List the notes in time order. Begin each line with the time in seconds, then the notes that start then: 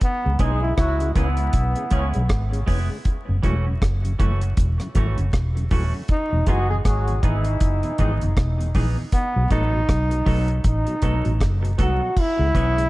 0.01 B3, kick, closed hi-hat
0.25 C#2 C#3 G#3
0.39 B1 G#3 B3 C#4 D#4 E4 G#4, kick, closed hi-hat
0.61 C#3 G#3 E4
0.76 C#2 F#3 E4 F#4, kick, cross-stick, closed hi-hat
1.00 C#3 G#3, closed hi-hat
1.15 C#2 E3 G#3 B3 C#4 E4 G#4, kick, closed hi-hat
1.37 muted clean electric guitar stroke, closed hi-hat
1.53 B1, kick, closed hi-hat
1.76 C#3 G#3, closed hi-hat
1.90 C#2 C#3 G#3 B3 C#4 E4 G#4, kick, closed hi-hat
2.14 B1 C#3 G#3, closed hi-hat
2.29 G#1, kick, cross-stick, closed hi-hat
2.52 C#3 G#3, closed hi-hat
2.66 F1 G#3 B3 C#4 E4 G#4, kick, open hi-hat
2.89 C#3 G#3, muted clean electric guitar stroke
3.05 kick, closed hi-hat
3.28 F#1 F#2 C#3
3.43 E1 E3 F#3 A3 C#4 E4 F#4, kick, closed hi-hat
3.66 F#2 C#3
3.82 F#1, kick, cross-stick, closed hi-hat
4.05 F#2 C#3, closed hi-hat
4.19 F#1 E3 F#3 A3 C#4 E4 F#4, kick, closed hi-hat
4.41 muted clean electric guitar stroke, closed hi-hat
4.57 E1, kick, closed hi-hat
4.80 F#2 C#3, cross-stick, closed hi-hat
4.94 G#1 E3 F#3 A3 C#4 E4 F#4, kick, closed hi-hat
5.17 F#1 F#2 C#3, closed hi-hat
5.33 E1, kick, cross-stick, closed hi-hat
5.56 F#2 C#3, closed hi-hat
5.71 D#1 E3 F#3 A3 C#4 E4 F#4, kick, open hi-hat
5.93 F#2 C#3
6.08 D#4, kick, closed hi-hat
6.32 E1 E2 B2
6.46 F#1 E3 G#3 B3 D#4 F#4 G#4, kick, closed hi-hat
6.70 E2 B2 G#4
6.85 G#1 F#3 F#4 G#4, kick, cross-stick, closed hi-hat
7.08 E2 B2, closed hi-hat
7.23 G#1 E3 G#3 B3 D#4 E4 G#4, kick, closed hi-hat
7.44 muted clean electric guitar stroke, closed hi-hat
7.60 F#1, kick, closed hi-hat
7.83 E2 B2, closed hi-hat
7.98 G#1 D#3 E3 G#3 B3 D#4 G#4, kick, closed hi-hat
8.21 F#1 E2 B2, closed hi-hat
8.37 E1, kick, cross-stick, closed hi-hat
8.59 E2 B2, closed hi-hat
8.75 A#1 E3 G#3 B3 D#4 G#4, kick, open hi-hat
8.97 E2 B2
9.12 B3, kick, closed hi-hat
9.36 B1 B2 F#3
9.51 A1 F#3 A3 B3 D#4 A4, kick, closed hi-hat
9.73 B2 F#3
9.89 B1, kick, cross-stick, closed hi-hat
10.11 B2 F#3, closed hi-hat
10.26 B1 F#3 A3 B3 D#4 A4, kick, open hi-hat
10.48 muted clean electric guitar stroke, closed hi-hat
10.64 A1 D#4, kick, closed hi-hat
10.87 B2 F#3, closed hi-hat
11.02 B1 F#3 A3 B3 D#4 A4, kick, closed hi-hat
11.25 A1 B2 F#3, closed hi-hat
11.41 F#1, kick, cross-stick, closed hi-hat
11.63 B2 F#3, muted clean electric guitar stroke, closed hi-hat
11.78 C2 F#3 A3 B3 D#4 A4, kick, closed hi-hat
11.82 F#4
12.01 B2 F#3
12.17 E4, kick, crash
12.39 C#2 C#3 G#3
12.54 B1 E3 B3 C#4 E4 G#4, kick, closed hi-hat
12.77 C#3 G#3, closed hi-hat